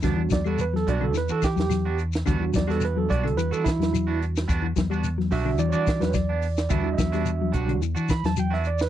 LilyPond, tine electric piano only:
\new Staff \with { instrumentName = "Tine electric piano" } { \time 4/4 \key e \minor \tempo 4 = 108 << { r8 d''16 a'16 b'16 a'16 d''16 a'16 b'16 a'16 g'4 r8 | r8 d''16 a'16 b'16 a'16 d''16 a'16 b'16 a'16 e'4 r8 | r4. e''8 d''16 <cis'' d''>8 b'16 <cis'' d''>4 | e''8 <dis'' e''>4 r4 b''16 a''16 g''16 e''16 d''16 b'16 | } \\ { <g d' fis'>8 r4 <g d' fis'>8 r2 | <g d' fis'>1 | r4. <g d' fis'>4. r4 | <g d' fis'>4. <g d' fis'>8 r2 | } >> }